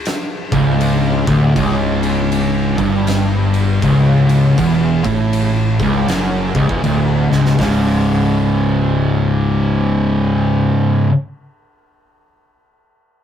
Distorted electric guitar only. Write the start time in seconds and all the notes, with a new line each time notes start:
0.52 C#2
1.27 D2
1.56 C#2
2.79 G2
3.82 C#2
4.58 E2
5.04 A2
5.81 C#2
6.08 F#2
6.55 C#2
6.69 E2
6.84 D2
7.30 C#2
7.58 C#2 G#2
7.62 C#3